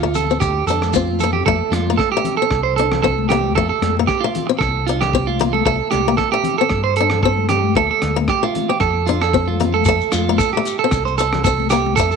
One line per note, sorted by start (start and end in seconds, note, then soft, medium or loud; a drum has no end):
0.00 0.38 D2 medium
0.00 0.23 A3 medium
0.00 0.14 F4 medium
0.15 0.40 A4 medium
0.15 closed hi-hat soft
0.15 low conga medium
0.15 shekere medium
0.30 0.51 C4 medium
0.30 shekere soft
0.40 0.66 D2 loud
0.40 0.66 G4 medium
0.40 kick medium
0.40 cross-stick medium
0.40 shekere medium
0.66 1.42 F2 medium
0.66 0.89 D4 medium
0.66 0.93 A4 medium
0.66 closed hi-hat soft
0.66 low conga medium
0.66 shekere medium
0.81 cross-stick medium
0.81 high conga medium
0.81 shekere soft
0.93 1.15 C4 medium
0.93 1.19 F4 medium
0.93 kick medium
0.93 high conga medium
0.93 shekere medium
1.07 high conga medium
1.19 1.33 A4 medium
1.19 closed hi-hat medium
1.19 low conga medium
1.19 shekere medium
1.24 1.42 A#3 medium
1.33 1.45 G4 medium
1.33 low conga medium
1.46 1.60 F2 medium
1.46 1.67 A3 medium
1.46 1.71 A4 medium
1.46 kick medium
1.71 1.97 F2 medium
1.71 1.97 F4 medium
1.71 cross-stick medium
1.71 closed hi-hat soft
1.71 high conga medium
1.87 2.09 A#3 medium
1.87 high conga medium
1.98 2.11 A4 medium
1.98 kick medium
1.98 cross-stick medium
2.12 2.37 G4 medium
2.17 2.35 A3 medium
2.24 closed hi-hat medium
2.24 low conga medium
2.37 2.63 A4 medium
2.42 2.61 C4 medium
2.51 3.56 C2 loud
2.51 kick medium
2.51 cross-stick medium
2.63 2.76 C5 medium
2.76 2.99 D4 medium
2.76 3.01 A4 medium
2.76 closed hi-hat soft
2.92 cross-stick medium
2.92 low conga medium
3.03 3.24 C4 medium
3.03 3.28 A4 medium
3.03 kick medium
3.18 high conga medium
3.29 3.51 A#3 medium
3.29 3.54 G4 medium
3.29 cross-stick medium
3.29 closed hi-hat medium
3.29 low conga medium
3.44 high conga medium
3.55 3.70 F2 medium
3.55 3.77 A3 medium
3.55 3.68 A4 medium
3.55 kick medium
3.69 3.95 A4 medium
3.81 4.07 F2 medium
3.81 cross-stick medium
3.81 closed hi-hat soft
3.81 high conga medium
3.97 4.18 A#3 medium
3.97 high conga medium
4.07 4.22 G4 medium
4.07 kick medium
4.07 cross-stick medium
4.20 4.44 A3 medium
4.20 4.47 F4 medium
4.35 closed hi-hat soft
4.35 low conga medium
4.47 4.69 C4 medium
4.47 muted clean electric guitar stroke medium
4.59 5.62 C2 loud
4.59 4.85 A4 medium
4.59 kick medium
4.59 cross-stick medium
4.87 5.09 D4 medium
4.87 5.01 F4 medium
4.87 closed hi-hat soft
5.01 5.26 G4 medium
5.01 cross-stick medium
5.01 low conga medium
5.13 5.34 C4 medium
5.13 kick medium
5.27 5.53 F4 medium
5.27 high conga medium
5.39 5.60 A#3 medium
5.39 closed hi-hat medium
5.39 low conga medium
5.53 5.64 A4 medium
5.53 high conga medium
5.66 5.80 C2 medium
5.66 5.86 A3 medium
5.66 5.90 A4 medium
5.66 kick medium
5.91 6.18 C2 medium
5.91 6.17 G4 medium
5.91 cross-stick medium
5.91 closed hi-hat soft
5.91 high conga medium
6.07 6.27 A#3 medium
6.07 high conga medium
6.17 6.31 A4 medium
6.17 kick medium
6.17 cross-stick medium
6.32 6.53 A3 medium
6.32 6.57 G4 medium
6.44 closed hi-hat medium
6.44 low conga medium
6.58 6.80 C4 medium
6.58 6.83 A4 medium
6.70 7.75 G2 loud
6.70 kick medium
6.70 cross-stick medium
6.84 6.96 C5 medium
6.96 7.22 A4 medium
6.96 closed hi-hat medium
7.00 7.19 D4 medium
7.10 cross-stick medium
7.10 low conga medium
7.23 7.45 C4 medium
7.23 7.48 A4 medium
7.23 kick medium
7.37 high conga medium
7.49 7.75 G4 medium
7.49 cross-stick medium
7.49 closed hi-hat medium
7.49 low conga medium
7.63 high conga medium
7.75 7.89 D2 medium
7.75 7.96 A3 medium
7.75 7.90 A4 medium
7.75 kick medium
7.91 8.16 A4 medium
8.02 8.27 D2 medium
8.02 cross-stick medium
8.02 closed hi-hat soft
8.02 high conga medium
8.16 8.37 A#3 medium
8.16 high conga medium
8.28 8.43 G4 medium
8.28 kick medium
8.28 cross-stick medium
8.43 8.63 A3 medium
8.43 8.68 F4 medium
8.55 closed hi-hat soft
8.55 high conga medium
8.55 low conga medium
8.69 8.89 C4 medium
8.69 8.80 G4 medium
8.80 9.82 F2 loud
8.80 9.06 A4 medium
8.80 kick medium
8.80 cross-stick medium
9.06 9.28 D4 medium
9.06 9.21 F4 medium
9.06 closed hi-hat soft
9.22 9.47 A4 medium
9.22 cross-stick medium
9.34 9.54 C4 medium
9.34 kick medium
9.48 9.73 F4 medium
9.48 high conga medium
9.60 9.80 A#3 medium
9.60 closed hi-hat medium
9.60 low conga medium
9.74 9.85 A4 medium
9.74 high conga medium
9.85 10.00 F2 medium
9.85 10.08 A3 medium
9.85 10.11 A4 medium
9.85 kick medium
9.85 shekere loud
10.01 shekere soft
10.12 10.38 F2 medium
10.12 10.38 F4 medium
10.12 cross-stick medium
10.12 closed hi-hat soft
10.12 high conga medium
10.12 shekere medium
10.28 10.48 A#3 medium
10.28 high conga medium
10.38 10.52 A4 medium
10.38 kick medium
10.38 cross-stick medium
10.38 shekere loud
10.53 10.78 G4 medium
10.57 10.76 A3 medium
10.65 closed hi-hat medium
10.65 shekere medium
10.79 11.04 A4 medium
10.84 11.02 C4 medium
10.91 11.97 C2 loud
10.91 kick medium
10.91 cross-stick medium
10.91 shekere medium
11.05 11.17 C5 medium
11.05 shekere soft
11.18 11.43 A4 medium
11.18 muted steel-string acoustic guitar stroke medium
11.18 closed hi-hat medium
11.18 shekere medium
11.33 cross-stick medium
11.33 low conga medium
11.44 11.66 C4 medium
11.44 11.69 A4 medium
11.44 kick medium
11.44 shekere medium
11.60 high conga medium
11.70 11.92 A#3 medium
11.70 11.95 G4 medium
11.70 cross-stick medium
11.70 closed hi-hat medium
11.70 shekere medium
11.86 high conga medium
11.96 12.11 F2 medium
11.96 12.16 A3 medium
11.96 12.10 A4 medium
11.96 kick medium
11.96 shekere medium
12.11 12.16 A4 medium
12.11 shekere soft